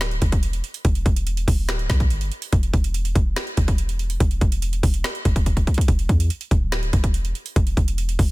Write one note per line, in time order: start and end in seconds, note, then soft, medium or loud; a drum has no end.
0.00 0.20 D1 loud
0.00 finger snap medium
0.00 snare loud
0.00 closed hi-hat medium
0.11 closed hi-hat soft
0.22 0.62 E1 loud
0.22 kick medium
0.22 closed hi-hat medium
0.32 kick loud
0.32 closed hi-hat medium
0.43 closed hi-hat medium
0.53 closed hi-hat medium
0.64 closed hi-hat soft
0.74 closed hi-hat medium
0.85 1.05 E1 loud
0.85 kick loud
0.85 closed hi-hat medium
0.95 closed hi-hat medium
1.06 1.46 E1 loud
1.06 kick loud
1.06 closed hi-hat medium
1.16 closed hi-hat medium
1.27 closed hi-hat medium
1.37 closed hi-hat medium
1.48 1.70 E1 loud
1.48 kick medium
1.48 open hi-hat medium
1.69 1.89 D1 loud
1.69 finger snap medium
1.69 snare loud
1.69 closed hi-hat medium
1.79 closed hi-hat soft
1.90 2.12 B1 loud
1.90 finger snap medium
1.90 kick medium
1.90 snare loud
1.90 closed hi-hat medium
2.00 kick loud
2.00 closed hi-hat medium
2.10 2.31 G1 medium
2.10 closed hi-hat medium
2.21 closed hi-hat medium
2.32 closed hi-hat soft
2.42 closed hi-hat medium
2.53 2.73 E1 loud
2.53 kick loud
2.53 closed hi-hat medium
2.63 closed hi-hat medium
2.73 3.14 E1 loud
2.73 kick loud
2.73 closed hi-hat medium
2.84 closed hi-hat medium
2.94 closed hi-hat medium
3.05 closed hi-hat medium
3.15 3.36 E1 loud
3.15 kick medium
3.15 closed hi-hat medium
3.36 finger snap medium
3.36 snare loud
3.36 closed hi-hat medium
3.47 closed hi-hat soft
3.57 4.18 E1 loud
3.57 kick medium
3.57 closed hi-hat medium
3.68 kick loud
3.68 closed hi-hat medium
3.78 closed hi-hat medium
3.89 closed hi-hat medium
3.99 closed hi-hat soft
4.10 closed hi-hat medium
4.20 4.41 E1 loud
4.20 kick loud
4.20 closed hi-hat medium
4.31 closed hi-hat medium
4.41 4.82 E1 loud
4.41 kick loud
4.41 closed hi-hat medium
4.52 closed hi-hat medium
4.62 closed hi-hat medium
4.73 closed hi-hat medium
4.83 5.03 E1 loud
4.83 kick medium
4.83 closed hi-hat soft
4.83 open hi-hat medium
4.94 closed hi-hat medium
5.04 finger snap medium
5.04 snare loud
5.04 closed hi-hat medium
5.15 closed hi-hat soft
5.25 5.66 E1 loud
5.25 kick medium
5.25 closed hi-hat medium
5.36 kick loud
5.36 closed hi-hat medium
5.46 kick medium
5.46 closed hi-hat medium
5.57 kick medium
5.57 closed hi-hat medium
5.67 kick medium
5.67 closed hi-hat soft
5.74 kick medium
5.74 closed hi-hat medium
5.81 closed hi-hat medium
5.88 6.08 E1 loud
5.88 kick loud
5.88 closed hi-hat medium
5.99 closed hi-hat medium
6.09 6.29 E2 loud
6.09 kick loud
6.09 closed hi-hat medium
6.20 closed hi-hat medium
6.30 closed hi-hat medium
6.41 closed hi-hat medium
6.51 6.91 D1 loud
6.51 kick medium
6.51 closed hi-hat medium
6.72 finger snap medium
6.72 snare loud
6.72 closed hi-hat medium
6.83 closed hi-hat soft
6.93 7.33 E1 loud
6.93 kick medium
6.93 closed hi-hat medium
7.04 kick loud
7.04 closed hi-hat medium
7.14 closed hi-hat medium
7.25 closed hi-hat medium
7.35 closed hi-hat soft
7.46 closed hi-hat medium
7.56 7.76 E1 loud
7.56 kick loud
7.56 closed hi-hat medium
7.67 closed hi-hat medium
7.77 8.17 E1 loud
7.77 kick loud
7.77 closed hi-hat medium
7.88 closed hi-hat medium
7.98 closed hi-hat medium
8.09 closed hi-hat medium
8.19 8.31 E1 loud
8.19 kick medium
8.19 open hi-hat medium